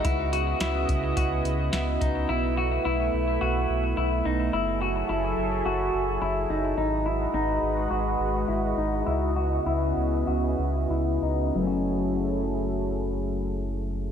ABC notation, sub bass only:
X:1
M:4/4
L:1/8
Q:1/4=107
K:F#dor
V:1 name="Sub bass" clef=bass
C,,2 C,, C,, C,, C,, C,, C,, | B,,,2 B,,, B,,, B,,, B,,, B,,, B,,, | F,,,2 F,,, F,,, F,,, F,,, F,,, F,,, | G,,,2 G,,, G,,, G,,, G,,, G,,, G,,, |
C,,2 C,, C,, C,, C,, C,, C,, | F,,,8 |]